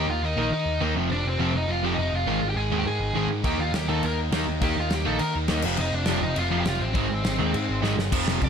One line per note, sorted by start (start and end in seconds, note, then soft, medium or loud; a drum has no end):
0.00 0.23 D#3 loud
0.00 0.23 A#3 loud
0.00 0.23 D#4 loud
0.07 0.20 D#2 medium
0.07 0.23 F4 medium
0.07 0.24 F5 medium
0.22 0.35 D#2 medium
0.22 0.51 D#3 medium
0.22 0.52 A#3 medium
0.22 0.52 D#4 loud
0.22 0.37 D#4 medium
0.22 0.39 D#5 medium
0.37 0.49 A#1 medium
0.37 0.49 D#3 loud
0.37 0.49 A#3 loud
0.37 0.49 D#4 loud
0.41 0.80 D#4 medium
0.41 0.80 D#5 medium
0.51 0.64 D#3 medium
0.51 0.81 D#3 medium
0.51 0.81 A#3 loud
0.51 0.80 D#4 loud
0.66 0.79 D#2 loud
0.81 0.93 D#2 loud
0.81 0.95 D#3 medium
0.81 0.95 A#3 medium
0.81 0.95 D#4 medium
0.95 1.08 F1 medium
0.95 1.07 F2 medium
0.95 1.08 C3 loud
0.95 1.08 F3 loud
1.10 1.23 F1 loud
1.10 1.39 F2 loud
1.10 1.38 C3 medium
1.10 1.38 F3 loud
1.10 1.25 D4 medium
1.14 1.27 D5 medium
1.26 1.38 F1 medium
1.26 1.53 C4 medium
1.26 1.57 C5 medium
1.39 1.52 F1 medium
1.39 1.67 F2 medium
1.39 1.68 C3 medium
1.39 1.68 F3 loud
1.54 1.67 F1 loud
1.54 1.69 D#4 medium
1.54 1.71 D#5 medium
1.68 1.93 F1 loud
1.68 1.98 F2 medium
1.68 1.97 C3 loud
1.68 1.97 F3 medium
1.68 1.83 F4 medium
1.72 1.85 F5 loud
1.84 1.95 F2 medium
1.84 1.96 C3 loud
1.84 1.96 F3 loud
1.84 1.91 G4 medium
1.84 1.92 G5 medium
1.93 2.12 D#4 medium
1.93 2.15 D#5 medium
1.98 2.11 F1 medium
1.98 2.26 F2 medium
1.98 2.27 C3 medium
1.98 2.26 F3 medium
2.12 2.25 F1 medium
2.12 2.48 F4 medium
2.12 2.49 F5 medium
2.27 2.40 G#1 loud
2.27 2.56 G#2 medium
2.27 2.56 D#3 loud
2.27 2.56 G#3 loud
2.41 2.54 G#1 medium
2.49 2.56 G4 medium
2.49 2.57 G5 medium
2.56 2.69 G#1 medium
2.56 2.84 G#2 medium
2.56 2.85 D#3 medium
2.56 2.85 G#3 loud
2.56 2.77 G#4 medium
2.56 2.78 G#5 medium
2.71 2.83 D#2 medium
2.71 2.83 G#2 medium
2.71 2.83 D#3 loud
2.71 2.83 G#3 loud
2.78 2.86 G4 medium
2.78 2.86 G5 loud
2.85 3.14 G#2 medium
2.85 2.98 G#2 medium
2.85 3.14 D#3 medium
2.85 3.14 G#3 medium
2.85 3.27 G#4 medium
2.85 3.27 G#5 medium
3.00 3.13 G#1 loud
3.14 3.27 G#1 medium
3.14 3.44 G#2 medium
3.14 3.43 D#3 medium
3.14 3.43 G#3 medium
3.27 3.41 G#2 medium
3.44 3.57 D#2 loud
3.44 3.74 D#3 medium
3.44 3.74 A#3 loud
3.44 3.73 D#4 loud
3.44 3.59 G4 medium
3.44 3.60 G5 medium
3.44 kick loud
3.44 crash medium
3.58 3.71 D#2 medium
3.58 3.73 F4 medium
3.58 3.74 F5 medium
3.73 3.86 D#2 loud
3.73 4.02 D#3 medium
3.73 4.03 A#3 medium
3.73 4.03 D#4 medium
3.73 3.88 G4 medium
3.73 3.88 G5 medium
3.73 snare loud
3.73 crash medium
3.88 4.01 D#2 medium
3.88 4.00 D#3 medium
3.88 4.00 A#3 loud
3.88 4.00 D#4 loud
3.88 4.02 A4 medium
3.88 4.03 A5 medium
4.03 4.28 D#2 medium
4.03 4.32 D#3 medium
4.03 4.32 A#3 medium
4.03 4.31 D#4 loud
4.03 4.18 A#4 medium
4.03 4.19 A#5 medium
4.03 crash soft
4.32 4.44 D#2 medium
4.32 4.61 D#3 medium
4.32 4.61 A#3 medium
4.32 4.62 D#4 medium
4.32 snare loud
4.32 crash medium
4.48 4.60 D#2 medium
4.61 4.74 D#2 loud
4.61 4.90 D#3 loud
4.61 4.90 A#3 medium
4.61 4.89 D#4 loud
4.61 4.76 G4 medium
4.61 4.78 G5 medium
4.61 kick loud
4.61 crash medium
4.77 4.89 D#2 medium
4.77 4.92 F4 medium
4.77 4.95 F5 medium
4.90 5.03 D#2 medium
4.90 5.19 D#3 medium
4.90 5.19 A#3 loud
4.90 5.19 D#4 loud
4.90 5.05 G4 medium
4.90 snare loud
4.90 crash medium
4.95 5.08 G5 medium
5.04 5.19 A#1 medium
5.04 5.17 D#3 loud
5.04 5.17 A#3 loud
5.04 5.17 D#4 loud
5.04 5.20 A4 medium
5.04 5.22 A5 medium
5.19 5.49 D#3 medium
5.19 5.33 D#3 medium
5.19 5.48 A#3 medium
5.19 5.48 D#4 loud
5.19 5.34 A#4 medium
5.19 5.35 A#5 loud
5.19 crash medium
5.36 5.48 D#2 medium
5.48 5.62 D#2 medium
5.48 5.63 D#3 medium
5.48 5.63 A#3 medium
5.48 5.63 D#4 medium
5.48 snare loud
5.48 crash medium
5.62 5.76 F1 medium
5.62 5.75 F2 medium
5.62 5.75 C3 loud
5.62 5.76 F3 medium
5.62 crash loud
5.77 5.91 F1 loud
5.77 6.06 F2 medium
5.77 6.05 C3 loud
5.77 6.04 F3 loud
5.77 5.92 D#4 medium
5.77 crash medium
5.81 5.95 D#5 loud
5.93 6.05 F1 medium
5.93 6.20 D4 medium
5.93 6.23 D5 medium
6.06 6.20 F1 medium
6.06 6.34 F2 medium
6.06 6.35 C3 medium
6.06 6.35 F3 loud
6.06 snare loud
6.06 crash medium
6.22 6.35 F1 medium
6.22 6.36 D#4 medium
6.22 6.38 D#5 medium
6.35 6.61 F1 medium
6.35 6.65 F2 medium
6.35 6.65 C3 loud
6.35 6.64 F3 loud
6.35 6.56 F4 medium
6.35 6.57 F5 loud
6.35 crash medium
6.51 6.63 F2 loud
6.51 6.63 C3 medium
6.51 6.63 F3 loud
6.58 6.66 G4 medium
6.58 6.60 F5 medium
6.58 6.68 G5 medium
6.65 6.78 F1 loud
6.65 6.94 F2 medium
6.65 6.94 C3 medium
6.65 6.94 F3 medium
6.65 6.80 F4 medium
6.65 6.82 F5 loud
6.65 snare loud
6.65 crash medium
6.81 6.93 A1 medium
6.81 7.80 C4 medium
6.81 7.79 C5 medium
6.94 7.08 G#1 loud
6.94 7.23 G#2 medium
6.94 7.22 D#3 medium
6.94 7.22 G#3 loud
6.94 kick loud
6.94 crash medium
7.10 7.23 G#1 medium
7.23 7.37 G#1 medium
7.23 7.52 G#2 medium
7.23 7.53 D#3 loud
7.23 7.53 G#3 loud
7.23 snare medium
7.23 crash medium
7.39 7.52 D#2 medium
7.39 7.51 G#2 loud
7.39 7.51 D#3 loud
7.39 7.51 G#3 loud
7.53 7.82 G#2 medium
7.53 7.66 G#2 loud
7.53 7.82 D#3 medium
7.53 7.81 G#3 loud
7.53 crash medium
7.69 7.81 G#1 medium
7.82 7.96 G#1 loud
7.82 8.12 G#2 medium
7.82 8.11 D#3 medium
7.82 8.11 G#3 medium
7.82 snare medium
7.97 8.12 G1 medium
7.97 snare medium
8.12 8.24 F1 loud
8.12 8.49 F2 medium
8.12 8.49 C3 medium
8.12 8.49 F3 medium
8.12 kick loud
8.12 crash loud
8.12 crash medium
8.28 8.39 F1 medium
8.28 snare loud
8.41 8.49 F1 medium
8.41 8.49 F2 medium
8.41 8.49 C3 medium
8.41 8.49 D5 medium
8.41 kick loud
8.41 crash medium